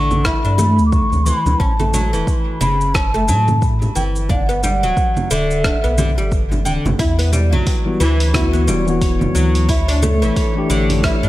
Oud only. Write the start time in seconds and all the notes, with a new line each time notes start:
Already playing: D3
0.25 E4
0.45 D4
0.59 A3
1.26 E3
1.60 C#4
1.80 A3
1.94 F#3
2.13 E3
2.61 C#3
2.94 C#4
3.14 A3
3.28 F#3
3.95 E3
4.30 D4
4.49 B3
4.64 G3
4.83 F#3
5.31 D3
5.65 D4
5.84 B3
5.98 D3
6.18 G3
6.65 D3
6.99 E4
7.19 B3
7.33 G3
7.53 F#3
8.00 E3
8.34 E4
8.53 B3
8.68 G3
9.35 F#3
9.69 E4
9.88 D4
10.03 A3
10.22 E3
10.70 D3
11.04 E4
11.23 D4